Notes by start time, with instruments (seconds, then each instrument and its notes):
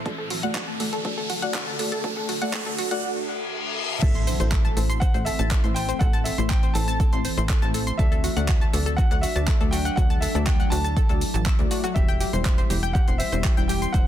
Already playing: riser
0.06 ambient pad D2 D3 A3 F#4 A4, synth stab A3 F#4 D5, synth arpeggio sound A4, kick, closed hi-hat
0.18 synth arpeggio sound A4
0.30 synth arpeggio sound F#4, open hi-hat
0.43 synth stab A3 F#4 D5, synth arpeggio sound F#5, closed hi-hat
0.55 synth arpeggio sound F#4, kick, clap
0.68 synth arpeggio sound A5
0.80 synth stab A3 F#4 D5, synth arpeggio sound A4, open hi-hat
0.93 synth arpeggio sound A4, closed hi-hat
1.05 synth stab A3 F#4 D5, synth arpeggio sound A4, kick, closed hi-hat
1.18 synth arpeggio sound A4
1.30 synth arpeggio sound F#4, open hi-hat
1.42 synth stab A3 F#4 D5, synth arpeggio sound F#5, closed hi-hat
1.54 synth arpeggio sound F#4, kick, clap, closed hi-hat
1.67 synth arpeggio sound A5
1.79 synth stab A3 F#4 D5, synth arpeggio sound A4, open hi-hat
1.92 synth arpeggio sound A4, closed hi-hat
2.04 synth stab A3 F#4 D5, synth arpeggio sound A4, kick, closed hi-hat
2.17 synth arpeggio sound A4
2.29 synth arpeggio sound F#4, open hi-hat
2.42 synth stab A3 F#4 D5, synth arpeggio sound F#5, closed hi-hat
2.53 synth stab A3, synth arpeggio sound A4, kick, clap, closed hi-hat
2.66 synth arpeggio sound A4
2.78 synth arpeggio sound F#4, open hi-hat
2.91 synth stab A3 F#4 D5, synth arpeggio sound F#5, closed hi-hat
3.03 reverse cymbal
4.01 analog synth bass A1, ambient pad E3 A3 C4, synth stab A3 E4 C5, synth arpeggio sound A4, grand piano E5, kick, closed hi-hat, crash, impact, cabasa
4.15 synth arpeggio sound C6, closed hi-hat, cabasa
4.27 synth arpeggio sound C5, open hi-hat, cabasa
4.40 analog synth bass A1, synth stab A3 E4 C5, synth arpeggio sound C5, closed hi-hat, cabasa
4.52 synth arpeggio sound A4, kick, clap, closed hi-hat, cabasa
4.65 synth arpeggio sound A5, closed hi-hat, cabasa
4.77 analog synth bass A1, synth stab A3 E4 C5, synth arpeggio sound A4, open hi-hat, cabasa
4.90 synth arpeggio sound C6, closed hi-hat, cabasa
5.00 synth arpeggio sound C5, grand piano F#5, kick, closed hi-hat, cabasa
5.14 analog synth bass A1, synth stab A3 E4 C5, synth arpeggio sound C5, closed hi-hat, cabasa
5.25 synth arpeggio sound A4, grand piano E5, open hi-hat, cabasa
5.39 analog synth bass A1, synth stab A3 E4 C5, synth arpeggio sound A5, closed hi-hat, cabasa
5.51 synth arpeggio sound A4, kick, clap, closed hi-hat, cabasa
5.64 analog synth bass A1, synth stab A3 E4 C5, synth arpeggio sound C6, closed hi-hat, cabasa
5.74 synth arpeggio sound C5, grand piano G5, open hi-hat, cabasa
5.89 synth arpeggio sound C5, closed hi-hat, cabasa
5.99 analog synth bass A1, synth stab A3 E4 C5, synth arpeggio sound A4, grand piano F#5, kick, closed hi-hat, cabasa
6.13 synth arpeggio sound A5, closed hi-hat, cabasa
6.24 synth arpeggio sound A4, grand piano E5, open hi-hat, cabasa
6.38 analog synth bass A1, synth stab A3 E4 C5, synth arpeggio sound C6, closed hi-hat, cabasa
6.49 synth arpeggio sound C5, grand piano G5, kick, clap, closed hi-hat, cabasa
6.63 synth arpeggio sound C5, closed hi-hat, cabasa
6.74 analog synth bass A1, synth stab A3 E4 C5, synth arpeggio sound A4, grand piano A5, open hi-hat, cabasa
6.88 synth arpeggio sound A5, closed hi-hat, cabasa
7.00 synth arpeggio sound A4, kick, closed hi-hat, cabasa
7.13 analog synth bass A1, synth stab A3 E4 C5, synth arpeggio sound C6, closed hi-hat, cabasa
7.25 synth arpeggio sound C5, open hi-hat, cabasa
7.37 analog synth bass A1, synth stab A3 E4 C5, synth arpeggio sound C5, closed hi-hat, cabasa
7.49 synth arpeggio sound A4, kick, clap, closed hi-hat, cabasa
7.62 analog synth bass A1, synth stab A3 E4 C5, synth arpeggio sound A5, closed hi-hat, cabasa
7.74 synth arpeggio sound A4, open hi-hat, cabasa
7.87 synth arpeggio sound C6, closed hi-hat, cabasa
7.97 analog synth bass D2, ambient pad F#3 A3 D4, synth stab A3 F#4 D5, synth arpeggio sound A4, grand piano E5, kick, closed hi-hat, cabasa
8.12 synth arpeggio sound A4, closed hi-hat, cabasa
8.24 synth arpeggio sound F#4, open hi-hat, cabasa
8.37 analog synth bass D2, synth stab A3 F#4 D5, synth arpeggio sound F#5, closed hi-hat, cabasa
8.48 synth arpeggio sound F#4, kick, clap, closed hi-hat, cabasa
8.61 synth arpeggio sound A5, closed hi-hat, cabasa
8.73 analog synth bass D2, synth stab A3 F#4 D5, synth arpeggio sound A4, open hi-hat, cabasa
8.86 synth arpeggio sound A4, closed hi-hat, cabasa
8.97 synth arpeggio sound F#4, grand piano F#5, kick, closed hi-hat, cabasa
9.11 analog synth bass D2, synth stab A3 F#4 D5, synth arpeggio sound F#5, closed hi-hat, cabasa
9.21 synth arpeggio sound F#4, grand piano E5, open hi-hat, cabasa
9.36 analog synth bass D2, synth stab A3 F#4 D5, synth arpeggio sound A5, closed hi-hat, cabasa
9.48 synth arpeggio sound A4, kick, clap, closed hi-hat, cabasa
9.61 analog synth bass D2, synth stab A3 F#4 D5, synth arpeggio sound A4, closed hi-hat, cabasa
9.71 synth arpeggio sound F#4, grand piano G5, open hi-hat, cabasa
9.85 synth arpeggio sound F#5, closed hi-hat, cabasa
9.96 analog synth bass D2, synth stab A3 F#4 D5, ambient pad E4, synth arpeggio sound F#4, grand piano F#5, kick, closed hi-hat, cabasa
10.10 synth arpeggio sound A5, closed hi-hat, cabasa
10.21 synth arpeggio sound A4, grand piano E5, open hi-hat, cabasa
10.35 analog synth bass D2, synth stab A3 F#4 D5, synth arpeggio sound A4, closed hi-hat, cabasa
10.45 synth arpeggio sound F#4, grand piano G5, kick, clap, closed hi-hat, cabasa
10.60 synth arpeggio sound F#5, closed hi-hat, cabasa
10.70 analog synth bass D2, synth stab A3 F#4 D5, synth arpeggio sound F#4, grand piano A5, open hi-hat, cabasa
10.85 synth arpeggio sound A5, closed hi-hat, cabasa
10.97 synth arpeggio sound A4, kick, closed hi-hat, cabasa
11.09 analog synth bass D2, synth stab A3 F#4 D5, synth arpeggio sound A4, closed hi-hat, cabasa
11.21 open hi-hat, cabasa
11.34 analog synth bass A1, synth arpeggio sound A5, closed hi-hat, cabasa
11.46 synth arpeggio sound E6, kick, clap, closed hi-hat, cabasa
11.59 analog synth bass D2, synth stab A3 F#4 D5, closed hi-hat, cabasa
11.71 synth stab A3 F#4 D5, synth arpeggio sound F#4, open hi-hat, cabasa
11.84 synth arpeggio sound F#4, closed hi-hat, cabasa
11.94 analog synth bass E1, ambient pad E3 G3 C4, synth stab G3 E4 C5, synth arpeggio sound G4, grand piano E5, kick, closed hi-hat, cabasa
12.08 synth arpeggio sound G5, closed hi-hat, cabasa
12.21 synth arpeggio sound G4, open hi-hat, cabasa
12.33 analog synth bass E1, synth stab G3 E4 C5, synth arpeggio sound C6, closed hi-hat, cabasa
12.45 synth arpeggio sound C5, kick, clap, closed hi-hat, cabasa
12.58 synth arpeggio sound C5, closed hi-hat, cabasa
12.70 analog synth bass E1, synth stab G3 E4 C5, synth arpeggio sound G4, open hi-hat, cabasa
12.83 synth arpeggio sound G5, closed hi-hat, cabasa
12.93 synth arpeggio sound G4, grand piano F#5, kick, closed hi-hat, cabasa
13.08 analog synth bass E1, synth stab G3 E4 C5, synth arpeggio sound C6, closed hi-hat, cabasa
13.18 synth arpeggio sound C5, grand piano E5, open hi-hat, cabasa
13.32 analog synth bass E1, synth stab G3 E4 C5, synth arpeggio sound C5, closed hi-hat, cabasa
13.44 synth arpeggio sound G4, kick, clap, closed hi-hat, cabasa
13.57 analog synth bass E1, synth stab G3 E4 C5, synth arpeggio sound G5, closed hi-hat, cabasa
13.68 synth arpeggio sound G4, grand piano G5, open hi-hat, cabasa
13.82 synth arpeggio sound C6, closed hi-hat, cabasa
13.93 analog synth bass E1, synth stab G3 E4 C5, synth arpeggio sound C5, grand piano F#5, kick, closed hi-hat, cabasa